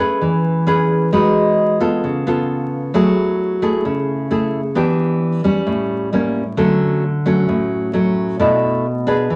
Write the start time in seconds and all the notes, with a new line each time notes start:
Already playing: A3
0.00 C#4 G#4 B4
0.21 E3
0.67 C#4 G#4 B4
1.12 G#3 D#4 F#4 B4
1.80 B3 F4 A4
2.04 C#3
2.27 B3 F4 A4
2.94 F#3 A3 E4 G#4
3.62 A3 E4 G#4
3.85 C#3
4.31 A3 E4 G#4
4.75 E3 B3 D4 G4
5.44 G3 C#4
5.67 A2
6.13 G3 A#3 C#4
6.57 D3 F#3 A3 C#4
7.26 F#3 A3 C#4
7.48 A2
7.93 F#3 A3 C#4
8.39 B2 A3 D4 E4
9.07 D4 G#4 B4
9.30 E3